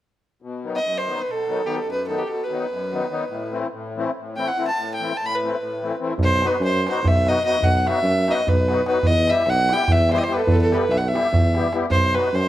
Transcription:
0.42 B2
0.63 D#3 F#3 B3 D#4
0.76 D#5
0.83 F#2
0.98 C5
1.06 D#3 F#3 B3 D#4
1.23 B4
1.28 B2 A4
1.48 D#3 F#3 B3 D#4
1.65 D#3 F#3 B3 D#4 G4
1.75 A4
1.85 F#2
1.91 B4
2.08 D#3 F#3 B3 D#4 A4
2.18 G4
2.27 B2 A4
2.43 B4
2.50 D#3 F#3 B3 D#4
2.70 F#2
2.92 D#3 F#3 B3 D#4
3.10 D#3 F#3 B3 D#4
3.28 A2
3.52 E3 A3 C4 E4
3.72 A2
3.96 E3 A3 C4 E4
4.17 A2
4.36 E3 A3 C4 E4 G5
4.48 F#5
4.56 E3 A3 C4 E4
4.67 A5
4.77 A2
4.95 G5
4.99 E3 A3 C4 E4
5.17 A2 A5
5.26 B5
5.35 B4
5.43 E3 A3 C4 E4
5.60 A2
5.82 E3 A3 C4 E4
6.00 E3 A3 C4 E4
6.18 B1, darbuka dum
6.23 C5
6.42 F#3 B3 D#4 F#4, darbuka tek
6.47 B4
6.60 F#2, darbuka tek
6.64 C5
6.74 darbuka tek
6.87 F#3 B3 D#4 F#4 C5, darbuka tek
6.96 darbuka tek
7.03 B1, darbuka dum
7.07 E5
7.26 F#3 B3 D#4 F#4 D#5, darbuka tek
7.45 F#3 B3 D#4 F#4 D#5
7.61 B1 F#5, darbuka dum
7.77 F#5
7.86 F#3 B3 D#4 F#4 E5, darbuka tek
7.96 darbuka tek
8.03 F#2, darbuka tek
8.18 darbuka tek
8.27 F#3 B3 D#4 F#4 D#5, darbuka tek
8.46 B1 B4, darbuka dum
8.66 F#3 B3 D#4 F#4, darbuka tek
8.85 F#3 B3 D#4 F#4 B4, darbuka tek
9.03 E2 D#5, darbuka dum
9.27 G3 B3 E4 G4 E5, darbuka tek
9.36 darbuka tek
9.46 B1 F#5, darbuka tek
9.57 darbuka tek
9.69 G3 B3 E4 G4, darbuka tek
9.73 G5
9.79 darbuka tek
9.88 E2, darbuka dum
9.92 E5
10.09 G3 B3 E4 G4 C5, darbuka tek
10.18 D#5
10.24 G3 C5
10.28 B3 E4 G4
10.34 A4 B4
10.41 B4
10.47 E2 A4, darbuka dum
10.55 B4
10.60 A4, darbuka tek
10.69 G3 B3 E4 G4, darbuka tek
10.73 B4
10.82 darbuka tek
10.89 B1 E5, darbuka tek
10.97 F#5
11.04 E5, darbuka tek
11.12 G3 B3 E4 G4, darbuka tek
11.25 darbuka tek
11.32 E2, darbuka dum
11.55 G3 B3 E4 G4, darbuka tek
11.64 darbuka tek
11.72 G3 B3 E4 G4, darbuka tek
11.90 B1 C5, darbuka dum
12.15 F#3 B3 D#4 F#4 B4, darbuka tek
12.25 darbuka tek
12.33 F#2 C5, darbuka tek

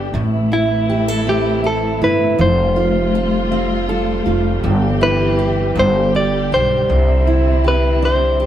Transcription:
Already playing: G1 G2 D3 G3 B3 D4 G4
0.13 A1 A2 C3 E3 A3 E4
0.52 E4
0.90 G4
1.08 A4
1.27 C4 G4
1.64 A4
2.02 G1 E4 B4
2.39 F1 F3 G3 F4 C5
2.76 F4
3.15 A4
3.52 C4
3.89 A4
4.26 F1 F4
4.64 G1 G2 E3 C4 G4
5.01 E4 B4
5.39 G4
5.76 G1 G2 B2 D3 G4 C5
6.15 G4 D5
6.52 B1 D4 C5
6.90 C2 C4 E4
7.27 E4
7.64 G4 B4
8.02 D4 C5
8.40 G4

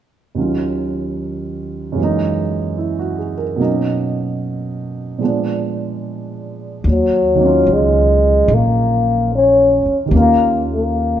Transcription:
0.35 D#2 D#3 F#3 C#4
0.39 F4
1.92 F#2 C#3
1.97 E3 G#3
2.01 A#3 D#4
2.78 E4
2.99 F#4
3.18 G#4
3.38 A#4
3.56 B2 F#3 A#3
3.60 C#4 D#4
5.18 A#2 F3 G#3
5.23 B3 D4
6.84 D#2
6.90 F#3
7.35 D#3 F#3
7.40 A#3 C#4
7.45 F4
7.66 C#2
7.73 G#3
8.48 A#1
8.54 A#3
9.35 C#4
9.86 muted upright bass stroke
10.06 D#3 G4
10.11 D#2 A#3 C#4
10.17 F4
10.72 A#3

